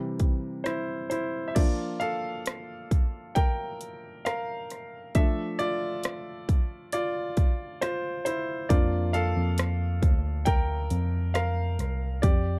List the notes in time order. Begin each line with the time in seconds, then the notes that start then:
Already playing: C3 E3 G3 D4 A#4
0.20 kick, closed hi-hat
0.64 E4 C5, cross-stick, closed hi-hat
1.10 E4 C5, cross-stick, closed hi-hat
1.48 E5
1.55 F3 A#3 D4 F4 D5, kick, closed hi-hat, crash
2.00 A4 F5, closed hi-hat
2.46 cross-stick, closed hi-hat
2.91 kick, closed hi-hat
3.35 A#4 G5, kick, closed hi-hat
3.81 closed hi-hat
4.25 A#4 F5, cross-stick, closed hi-hat
4.70 cross-stick, closed hi-hat
5.15 F3 A3 D4 A4 E5, kick, closed hi-hat
5.59 F4 D5, closed hi-hat
6.04 cross-stick, closed hi-hat
6.49 kick, closed hi-hat
6.92 F4 D5, closed hi-hat
7.37 kick, closed hi-hat
7.81 F4 C5, cross-stick, closed hi-hat
8.25 E4 C5, cross-stick, closed hi-hat
8.69 F2 F3 A#3 D4 F4 D5, kick, closed hi-hat
9.13 A4 F5, closed hi-hat
9.36 F2
9.58 cross-stick, closed hi-hat
10.02 D2, kick, closed hi-hat
10.45 A#4 G5, kick, closed hi-hat
10.90 F2, closed hi-hat
11.34 A#4 F5, cross-stick, closed hi-hat
11.79 C2, cross-stick, closed hi-hat
12.22 F2 G4 D5, kick, closed hi-hat